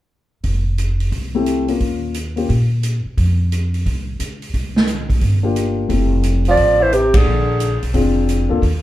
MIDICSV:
0, 0, Header, 1, 7, 480
1, 0, Start_track
1, 0, Key_signature, -1, "major"
1, 0, Tempo, 340522
1, 633, Time_signature, 4, 2, 24, 8
1, 12433, End_track
2, 0, Start_track
2, 0, Title_t, "Clarinet"
2, 0, Program_c, 0, 71
2, 9167, Note_on_c, 0, 74, 89
2, 9622, Note_on_c, 0, 72, 83
2, 9643, Note_off_c, 0, 74, 0
2, 9783, Note_on_c, 0, 67, 74
2, 9804, Note_off_c, 0, 72, 0
2, 10106, Note_on_c, 0, 68, 72
2, 10128, Note_off_c, 0, 67, 0
2, 11046, Note_off_c, 0, 68, 0
2, 12433, End_track
3, 0, Start_track
3, 0, Title_t, "Grand piano"
3, 0, Program_c, 1, 0
3, 1895, Note_on_c, 1, 57, 57
3, 1903, Note_on_c, 1, 60, 53
3, 1908, Note_on_c, 1, 64, 54
3, 1916, Note_on_c, 1, 67, 65
3, 2349, Note_off_c, 1, 57, 0
3, 2353, Note_off_c, 1, 60, 0
3, 2356, Note_off_c, 1, 64, 0
3, 2360, Note_off_c, 1, 67, 0
3, 2361, Note_on_c, 1, 58, 50
3, 2371, Note_on_c, 1, 61, 43
3, 2375, Note_on_c, 1, 65, 47
3, 2385, Note_on_c, 1, 70, 54
3, 2990, Note_off_c, 1, 58, 0
3, 2994, Note_off_c, 1, 61, 0
3, 2996, Note_off_c, 1, 65, 0
3, 3002, Note_off_c, 1, 70, 0
3, 3328, Note_on_c, 1, 58, 50
3, 3342, Note_on_c, 1, 61, 47
3, 3346, Note_on_c, 1, 65, 49
3, 3355, Note_on_c, 1, 67, 56
3, 3490, Note_off_c, 1, 58, 0
3, 3497, Note_off_c, 1, 61, 0
3, 3499, Note_off_c, 1, 65, 0
3, 3504, Note_off_c, 1, 67, 0
3, 7656, Note_on_c, 1, 58, 61
3, 7657, Note_on_c, 1, 62, 52
3, 7673, Note_on_c, 1, 65, 54
3, 7673, Note_on_c, 1, 67, 64
3, 8278, Note_off_c, 1, 58, 0
3, 8278, Note_off_c, 1, 62, 0
3, 8286, Note_off_c, 1, 65, 0
3, 8286, Note_off_c, 1, 67, 0
3, 8288, Note_on_c, 1, 57, 47
3, 8296, Note_on_c, 1, 60, 43
3, 8308, Note_on_c, 1, 64, 45
3, 8321, Note_on_c, 1, 67, 51
3, 9640, Note_off_c, 1, 57, 0
3, 9644, Note_off_c, 1, 60, 0
3, 9651, Note_off_c, 1, 64, 0
3, 9657, Note_off_c, 1, 67, 0
3, 11187, Note_on_c, 1, 60, 59
3, 11190, Note_on_c, 1, 62, 55
3, 11198, Note_on_c, 1, 65, 55
3, 11209, Note_on_c, 1, 68, 59
3, 11919, Note_off_c, 1, 60, 0
3, 11921, Note_off_c, 1, 62, 0
3, 11925, Note_off_c, 1, 65, 0
3, 11930, Note_off_c, 1, 68, 0
3, 11967, Note_on_c, 1, 58, 60
3, 11973, Note_on_c, 1, 62, 52
3, 11983, Note_on_c, 1, 65, 60
3, 11988, Note_on_c, 1, 69, 65
3, 12129, Note_off_c, 1, 58, 0
3, 12132, Note_off_c, 1, 62, 0
3, 12137, Note_off_c, 1, 65, 0
3, 12140, Note_off_c, 1, 69, 0
3, 12433, End_track
4, 0, Start_track
4, 0, Title_t, "Tenor saxophone"
4, 0, Program_c, 2, 66
4, 9139, Note_on_c, 2, 53, 79
4, 9599, Note_on_c, 2, 52, 74
4, 9620, Note_off_c, 2, 53, 0
4, 9772, Note_on_c, 2, 48, 65
4, 9793, Note_off_c, 2, 52, 0
4, 10078, Note_on_c, 2, 50, 63
4, 10099, Note_off_c, 2, 48, 0
4, 11032, Note_off_c, 2, 50, 0
4, 12433, End_track
5, 0, Start_track
5, 0, Title_t, "Upright bass"
5, 0, Program_c, 3, 32
5, 615, Note_on_c, 3, 29, 67
5, 1536, Note_off_c, 3, 29, 0
5, 1575, Note_on_c, 3, 36, 69
5, 2497, Note_off_c, 3, 36, 0
5, 2546, Note_on_c, 3, 39, 71
5, 3463, Note_off_c, 3, 39, 0
5, 3517, Note_on_c, 3, 46, 74
5, 4252, Note_off_c, 3, 46, 0
5, 4475, Note_on_c, 3, 41, 73
5, 5388, Note_off_c, 3, 41, 0
5, 5442, Note_on_c, 3, 36, 71
5, 5887, Note_off_c, 3, 36, 0
5, 5913, Note_on_c, 3, 37, 62
5, 6362, Note_off_c, 3, 37, 0
5, 6397, Note_on_c, 3, 36, 73
5, 7310, Note_off_c, 3, 36, 0
5, 7354, Note_on_c, 3, 31, 74
5, 8268, Note_off_c, 3, 31, 0
5, 8310, Note_on_c, 3, 29, 73
5, 9225, Note_off_c, 3, 29, 0
5, 9272, Note_on_c, 3, 33, 76
5, 10186, Note_off_c, 3, 33, 0
5, 10235, Note_on_c, 3, 34, 69
5, 10970, Note_off_c, 3, 34, 0
5, 11032, Note_on_c, 3, 35, 59
5, 11184, Note_off_c, 3, 35, 0
5, 11192, Note_on_c, 3, 29, 75
5, 11928, Note_off_c, 3, 29, 0
5, 11988, Note_on_c, 3, 38, 63
5, 12139, Note_off_c, 3, 38, 0
5, 12147, Note_on_c, 3, 39, 77
5, 12433, Note_off_c, 3, 39, 0
5, 12433, End_track
6, 0, Start_track
6, 0, Title_t, "Muted upright bass strokes"
6, 4304, Note_on_c, 9, 29, 34
6, 4445, Note_off_c, 9, 29, 0
6, 12433, End_track
7, 0, Start_track
7, 0, Title_t, "Drums"
7, 614, Note_on_c, 9, 46, 34
7, 619, Note_on_c, 9, 36, 28
7, 755, Note_off_c, 9, 46, 0
7, 760, Note_off_c, 9, 36, 0
7, 1101, Note_on_c, 9, 42, 39
7, 1242, Note_off_c, 9, 42, 0
7, 1411, Note_on_c, 9, 46, 30
7, 1552, Note_off_c, 9, 46, 0
7, 1582, Note_on_c, 9, 36, 26
7, 1582, Note_on_c, 9, 46, 31
7, 1723, Note_off_c, 9, 36, 0
7, 1723, Note_off_c, 9, 46, 0
7, 2060, Note_on_c, 9, 42, 39
7, 2201, Note_off_c, 9, 42, 0
7, 2372, Note_on_c, 9, 46, 29
7, 2513, Note_off_c, 9, 46, 0
7, 2543, Note_on_c, 9, 46, 33
7, 2546, Note_on_c, 9, 36, 29
7, 2684, Note_off_c, 9, 46, 0
7, 2687, Note_off_c, 9, 36, 0
7, 3021, Note_on_c, 9, 42, 40
7, 3162, Note_off_c, 9, 42, 0
7, 3339, Note_on_c, 9, 46, 30
7, 3480, Note_off_c, 9, 46, 0
7, 3512, Note_on_c, 9, 36, 27
7, 3518, Note_on_c, 9, 46, 33
7, 3653, Note_off_c, 9, 36, 0
7, 3659, Note_off_c, 9, 46, 0
7, 3991, Note_on_c, 9, 42, 42
7, 4132, Note_off_c, 9, 42, 0
7, 4476, Note_on_c, 9, 36, 29
7, 4477, Note_on_c, 9, 46, 38
7, 4617, Note_off_c, 9, 36, 0
7, 4618, Note_off_c, 9, 46, 0
7, 4962, Note_on_c, 9, 42, 42
7, 5103, Note_off_c, 9, 42, 0
7, 5271, Note_on_c, 9, 46, 29
7, 5412, Note_off_c, 9, 46, 0
7, 5441, Note_on_c, 9, 36, 28
7, 5444, Note_on_c, 9, 46, 36
7, 5582, Note_off_c, 9, 36, 0
7, 5585, Note_off_c, 9, 46, 0
7, 5917, Note_on_c, 9, 42, 43
7, 6057, Note_off_c, 9, 42, 0
7, 6230, Note_on_c, 9, 46, 31
7, 6371, Note_off_c, 9, 46, 0
7, 6397, Note_on_c, 9, 36, 28
7, 6399, Note_on_c, 9, 46, 36
7, 6538, Note_off_c, 9, 36, 0
7, 6540, Note_off_c, 9, 46, 0
7, 6715, Note_on_c, 9, 38, 46
7, 6856, Note_off_c, 9, 38, 0
7, 6869, Note_on_c, 9, 42, 42
7, 7010, Note_off_c, 9, 42, 0
7, 7183, Note_on_c, 9, 36, 44
7, 7188, Note_on_c, 9, 46, 31
7, 7324, Note_off_c, 9, 36, 0
7, 7329, Note_off_c, 9, 46, 0
7, 7346, Note_on_c, 9, 46, 37
7, 7350, Note_on_c, 9, 36, 27
7, 7487, Note_off_c, 9, 46, 0
7, 7491, Note_off_c, 9, 36, 0
7, 7837, Note_on_c, 9, 42, 42
7, 7978, Note_off_c, 9, 42, 0
7, 8311, Note_on_c, 9, 36, 28
7, 8312, Note_on_c, 9, 46, 38
7, 8452, Note_off_c, 9, 36, 0
7, 8453, Note_off_c, 9, 46, 0
7, 8787, Note_on_c, 9, 42, 45
7, 8928, Note_off_c, 9, 42, 0
7, 9091, Note_on_c, 9, 46, 32
7, 9232, Note_off_c, 9, 46, 0
7, 9262, Note_on_c, 9, 46, 35
7, 9269, Note_on_c, 9, 36, 29
7, 9403, Note_off_c, 9, 46, 0
7, 9410, Note_off_c, 9, 36, 0
7, 9762, Note_on_c, 9, 42, 42
7, 9903, Note_off_c, 9, 42, 0
7, 10062, Note_on_c, 9, 51, 63
7, 10065, Note_on_c, 9, 36, 69
7, 10203, Note_off_c, 9, 51, 0
7, 10206, Note_off_c, 9, 36, 0
7, 10714, Note_on_c, 9, 42, 46
7, 10854, Note_off_c, 9, 42, 0
7, 11030, Note_on_c, 9, 46, 33
7, 11171, Note_off_c, 9, 46, 0
7, 11192, Note_on_c, 9, 46, 37
7, 11196, Note_on_c, 9, 36, 29
7, 11333, Note_off_c, 9, 46, 0
7, 11337, Note_off_c, 9, 36, 0
7, 11679, Note_on_c, 9, 42, 45
7, 11820, Note_off_c, 9, 42, 0
7, 12155, Note_on_c, 9, 36, 30
7, 12163, Note_on_c, 9, 46, 37
7, 12296, Note_off_c, 9, 36, 0
7, 12304, Note_off_c, 9, 46, 0
7, 12433, End_track
0, 0, End_of_file